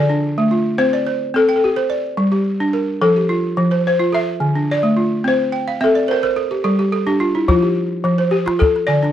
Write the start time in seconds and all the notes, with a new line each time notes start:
Already playing: D3 D5
0.09 D4
0.38 A3
0.51 F4
0.78 C4 C5
0.93 D5
1.07 C5
1.34 C4 A4
1.49 G5
1.56 A4
1.64 G4
1.76 C5
1.90 D5
2.17 G3
2.32 G4
2.60 D4
2.73 A#4
3.02 F3 A4
3.16 G4
3.29 F4
3.57 F3
3.71 C5
3.87 C5
3.99 F4
4.12 A4 E5
4.40 D3
4.55 D4
4.71 D5
4.83 A3
4.97 F4
5.24 C4 C5
5.52 G5
5.68 F5
5.81 C4 A4 E5
5.95 D5
6.08 A#4 C5
6.23 A#4 C5
6.36 A4
6.51 G4
6.64 G3 A4
6.79 G4
6.92 A4
7.07 D4 G4
7.20 F4
7.35 E4
7.48 F3 F4, calabash thump
7.62 G4
8.04 F3, calabash click
8.18 C5
8.31 G4
8.46 F4, calabash click
8.59 A4, calabash thump
8.76 calabash click
8.87 D3 D5, calabash click
9.03 D4, calabash click